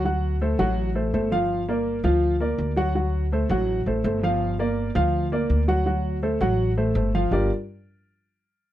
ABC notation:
X:1
M:4/4
L:1/8
Q:1/4=165
K:Gm
V:1 name="Grand piano"
[^F,^F^f]2 [A,Ac] [F,Ff]2 [A,Ac] [A,Ac] [=F,=F=f]- | [F,Ff] [B,Bd]2 [F,Ff]2 [B,Bd]2 [^F,^F^f] | [^F,^F^f]2 [A,Ac] [F,Ff]2 [A,Ac] [A,Ac] [=F,=F=f]- | [F,Ff] [B,Bd]2 [F,Ff]2 [B,Bd]2 [^F,^F^f] |
[^F,^F^f]2 [A,Ac] [F,Ff]2 [A,Ac] [A,Ac] [=F,=F=f] | [G,DFGBd] z6 z |]
V:2 name="Upright bass" clef=bass
D,,3 A,,,3 G,,,2- | G,,,3 D,,3 D,,2- | D,,3 A,,,2 A,,, G,,,2- | G,,,3 D,,3 D,,2- |
D,,3 A,,,3 G,,,2 | G,,, z6 z |]